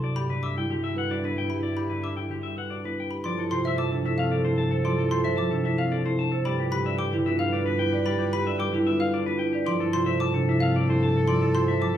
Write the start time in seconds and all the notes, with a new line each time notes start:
0.03 G2 E4 F#4 D5
0.16 G4 B5
0.29 D3 B4 D5
0.43 E5 D6
0.56 G3 E4 G5
0.70 D3 F#4 G4
0.83 D4 E5
0.96 B4 F#5
1.10 D4 F#4 D5
1.23 B3 E4 B4
1.38 G5
1.50 G4 B5
1.63 F#4 D5
1.77 G4 B5
1.90 D3 B4 D5
2.03 E5 D6
2.17 G3 E4 G5
2.31 D3 F#4 G4
2.43 D4 E5
2.57 B4 F#5
2.70 D4 F#4 D5
2.84 B3 E4 B4
3.00 G5
3.10 G4 B5
3.24 G2 F3 F4 A4 D5 C6
3.38 E4 A4
3.51 C3 F4 C5 C6
3.65 C5 E5
3.78 F3 F4 A5 D6
3.92 C3 D4 A4
4.05 A3 E4 E5
4.18 C4 F5
4.32 C4 A4 D5
4.45 A3 E4 C5
4.58 D4 A5
4.71 A4 C5
4.85 F3 F4 D5 C6
4.98 E4 A4
5.11 C3 F4 C5 C6
5.24 C5 E5
5.37 F3 F4 A5 D6
5.51 C3 D4 A4
5.65 A3 E4 E5
5.78 C4 F5
5.91 C4 A4 D5
6.05 A3 E4 C5
6.19 D4 A5
6.32 A4 C5
6.45 G2 G3 G4 B4 D5 B5
6.59 F4 G4
6.72 D3 G4 B4 B5
6.86 D5 E5
6.98 G3 G4 G5 D6
7.13 D3 E4 G4
7.26 B3 F4 E5
7.39 D4 F5
7.53 D4 B4 D5
7.66 B3 F4 B4
7.79 E4 G5
7.93 G4 D5
8.06 G3 G4 D5 B5
8.19 F4 G4
8.33 D3 G4 B4 B5
8.47 D5 E5
8.59 G3 G4 G5 D6
8.74 D3 E4 G4
8.87 B3 F4 E5
9.00 D4 F5
9.13 D4 B4 D5
9.26 B3 F4 B4
9.39 E4 G5
9.53 G4 D5
9.66 G2 F3 F4 A4 D5 C6
9.80 E4 A4
9.93 C3 F4 C5 C6
10.06 C5 E5
10.20 F3 F4 A5 D6
10.34 C3 D4 A4
10.48 E4 E5
10.60 C4 F5
10.74 C4 A4 D5
10.87 A3 E4 C5
11.03 A5
11.17 A4
11.28 F3 F4 D5 C6
11.41 E4 A4
11.55 C3 F4 C5 C6
11.68 C5 E5
11.81 F3 F4 A5 D6